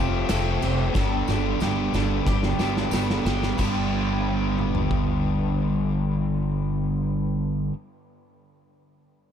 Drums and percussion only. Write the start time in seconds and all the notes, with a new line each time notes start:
0.29 snare, tambourine, crash
0.62 crash
0.95 kick, snare, tambourine
1.28 snare, tambourine
1.60 snare, tambourine
1.94 snare, tambourine
2.27 kick, snare
2.43 snare
2.59 snare, tambourine
2.77 snare
2.91 snare, tambourine
3.10 snare
3.27 snare
3.43 snare
3.58 kick, crash, tambourine
4.58 mid tom
4.75 floor tom
4.91 kick